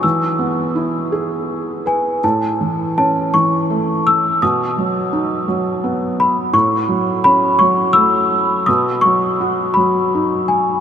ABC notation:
X:1
M:6/8
L:1/8
Q:3/8=55
K:Alyd
V:1 name="Celesta"
e'4 z g | a2 a c'2 e' | d'4 z b | c'2 b c' e'2 |
d' c'2 b2 g |]
V:2 name="Felt piano" clef=bass
E, B, E G2 B | A,, E, C E, A,2 | B,, F, D F, B,2 | A,, F, C F, A,2 |
B,, F, F F, D2 |]